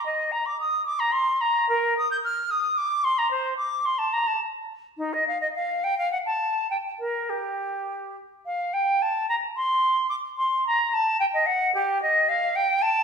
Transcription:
0.05 D#5
0.31 A#5
0.45 D6
0.59 D#6
0.85 D6
0.99 A#5
1.12 C6
1.40 A#5
1.68 A#4
1.97 D#6
2.11 G6
2.24 F6
2.50 D#6
2.77 D6
3.04 C6
3.18 A#5
3.30 C5
3.57 D6
3.85 C6
3.98 A5
4.13 A#5
4.27 A5
4.97 D#4
5.13 D#5
5.27 F5
5.41 D#5
5.55 F5
5.83 G5
5.97 F5
6.12 F#5
6.26 A5
6.70 G5
6.99 A#4
7.29 G4
8.45 F5
8.73 G5
9.02 A5
9.29 A#5
9.56 C6
10.09 D6
10.37 C6
10.66 A#5
10.93 A5
11.19 G5
11.33 D#5
11.46 F#5
11.74 G4
12.02 D#5
12.28 F5
12.55 G5
12.82 A5

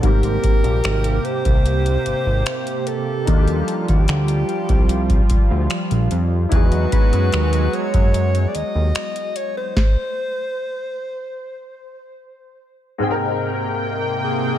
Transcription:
Already playing: A5 C6
0.01 G#1 G#2 C3 G3 A#3 G4 A#4, kick, closed hi-hat
0.05 C4 G4
0.23 closed hi-hat
0.44 kick, closed hi-hat
0.64 A#1, closed hi-hat
0.84 G#1, finger snap, closed hi-hat
1.04 closed hi-hat
1.25 C5, closed hi-hat
1.45 C2, kick, closed hi-hat
1.66 closed hi-hat
1.86 closed hi-hat
2.06 G#1, closed hi-hat
2.26 G#1
2.46 finger snap, closed hi-hat
2.67 closed hi-hat
2.87 A4, closed hi-hat
3.25 D#2 F3 G3 A#3 D4 D#4 F4, kick, closed hi-hat
3.30 F4 F#4
3.38 G4
3.48 closed hi-hat
3.68 closed hi-hat
3.88 D#2 G4, kick, closed hi-hat
4.08 D2, finger snap, closed hi-hat
4.28 closed hi-hat
4.49 closed hi-hat
4.69 C2, kick, closed hi-hat
4.89 closed hi-hat
5.10 kick, closed hi-hat
5.30 D2, kick, closed hi-hat
5.51 D2
5.70 finger snap, closed hi-hat
5.91 A#1, closed hi-hat
6.11 F2, closed hi-hat
6.49 E2 F#3 G#3 B3 D#4 E4 F#4 B4, kick, closed hi-hat
6.54 F#4 G#4
6.72 closed hi-hat
6.92 B5, kick, closed hi-hat
7.13 F#2, closed hi-hat
7.32 D#2, finger snap, closed hi-hat
7.53 closed hi-hat
7.73 C#5, closed hi-hat
7.94 F#2, kick, closed hi-hat
8.14 closed hi-hat
8.35 closed hi-hat
8.49 D5
8.55 D#2 D#5, closed hi-hat
8.75 D#2
8.95 finger snap, closed hi-hat
9.16 closed hi-hat
9.36 C#5, closed hi-hat
9.57 C5
9.76 kick, snare
12.98 G#2 C3 G#3 A#3 C4 G5
13.03 G#4 G5
13.11 A#4
14.24 G#4

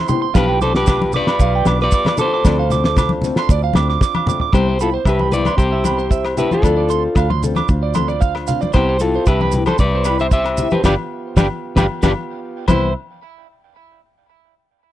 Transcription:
Already playing: C4 E4 C5
0.08 B3 E4 G4 C6, low conga, maracas
0.22 C6
0.34 B1 F3 B3 D4 F4 G4 B4 F5, kick, snare, low agogo, maracas
0.49 G5
0.61 B3 D4 A4 C5 D6, snare, low conga, maracas
0.75 G4 B4 D6, snare
0.87 D6, kick, snare, low conga, low agogo, maracas
1.02 high conga
1.12 D4 B4 D5 D6, snare, low conga, maracas
1.18 B3
1.27 B5, snare, low agogo
1.39 B1 F5, kick, maracas
1.55 G5
1.65 B1 D4 D6, snare, high conga, low agogo, maracas
1.69 B3
1.80 B4 D5 D6, snare
1.91 D6, kick, maracas
2.05 D6, snare, high conga, low agogo
2.17 B3 D4 A4 C5 D6, low conga, maracas
2.34 D6
2.43 D2 F3 A3 C4 D4 D5, kick, snare, low agogo, maracas
2.59 F5
2.70 A3 C4 D6, snare, low conga, maracas
2.84 D6, snare
2.96 D6, kick, snare, low conga, low agogo, maracas
3.09 high conga
3.22 C4, snare, low conga, maracas
3.26 A3
3.36 C6, snare, low agogo
3.49 D2 D5, kick, maracas
3.64 F5
3.73 D2 C4 D6, snare, high conga, low agogo, maracas
3.78 A3
3.89 D6, snare
4.01 D6, kick, snare, maracas
4.15 D6, high conga, low agogo
4.26 A3 C4 D6, mid tom, low conga, maracas
4.40 D6, floor tom
4.52 C2 G3 B3 C4 E4 G4 C5, kick, cross-stick, low agogo, maracas
4.69 C5
4.79 B3 E4 F4 G4 A4 B5, closed hi-hat, maracas
4.94 C5
5.05 C2 G4 B4 E5, kick, cross-stick, low agogo, maracas
5.19 B5, high conga
5.31 E4 G4 B4 D5, closed hi-hat, low conga, maracas
5.35 B3
5.45 C6, cross-stick, high conga, low agogo, maracas
5.58 C2 G4 C5, kick, maracas
5.72 E5
5.84 G4 B5, muted nylon-string guitar stroke, cross-stick, closed hi-hat, high conga, low agogo, maracas
5.88 B3
5.98 C5, maracas
6.11 E5, kick, maracas
6.25 cross-stick, low agogo
6.37 B3 E4 G4 B4 E5, closed hi-hat, low conga, maracas
6.51 F4 A4 C5, high conga, maracas
6.62 D2 F3 D4 F4 A4 C5 D5, muted nylon-string guitar stroke, kick, cross-stick, low agogo, maracas
6.77 D5
6.89 C4 D4 A4 C6, closed hi-hat, maracas
7.15 D2 F5, kick, cross-stick, low agogo, maracas
7.30 C6, high conga
7.42 C4 D4 A4, closed hi-hat, low conga, maracas
7.56 D6, cross-stick, high conga, low agogo, maracas
7.68 D2, kick, maracas
7.83 D5
7.94 C4 A4 C6, cross-stick, closed hi-hat, high conga, low agogo, maracas
8.08 D5, maracas
8.21 F5, kick, maracas
8.35 cross-stick, low agogo
8.47 C4 D4 F5, closed hi-hat, low conga, maracas
8.61 D5, high conga, maracas
8.73 C2 B3 C4 E4 G4 C5, kick, cross-stick, low agogo, maracas
8.89 C5
9.00 E4 F4 G4 A4, closed hi-hat, maracas
9.15 C5
9.26 C2 G4 B4 E5, kick, cross-stick, low agogo, maracas
9.41 B5, high conga
9.52 G4, closed hi-hat, low conga, maracas
9.57 E4
9.66 A4 C5 C6, cross-stick, high conga, low agogo, maracas
9.78 C2 B4 D5, kick, maracas
9.95 C5
10.04 G4 B5, cross-stick, closed hi-hat, low agogo, maracas
10.09 E4
10.20 C5 E5, maracas
10.31 C5 E5, kick, maracas
10.44 cross-stick, low agogo
10.57 G4 E5, closed hi-hat, low conga, maracas
10.61 E4
10.71 G4 B4 C5, high conga, maracas
10.83 G1 B3 D4 F4 G4 B4 D5 F5 G5, kick, snare, high conga, low agogo, maracas
11.36 G1 D4 F4 G4 B4 D5 F5 G5, kick, snare, high conga, low agogo, maracas
11.76 G1 D4 F4 G4 B4 D5 F5 G5, kick, snare, high conga, low agogo, maracas
12.03 G1 D4 F4 G4 B4 D5 F5 G5, kick, snare, high conga, low agogo, maracas
12.68 C2 E3 B3 C4 E4 G4 B4 C5 E5 B5, muted clean electric guitar stroke, kick, crash, high conga, low agogo, maracas

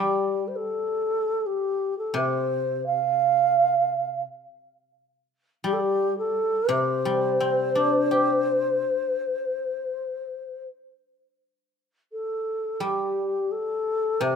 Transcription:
Already playing: G3
0.02 G4
0.47 C5
0.55 A4
1.46 G4
1.98 A4
2.14 C3 C5
2.86 F5
5.64 G3 G4
5.72 A4
5.79 G4
6.18 A4
6.69 C3 C5
7.05 G3
7.40 C4
7.75 D4
8.11 G4
12.12 A4
12.80 G3 G4
13.51 A4
14.20 C3 C5

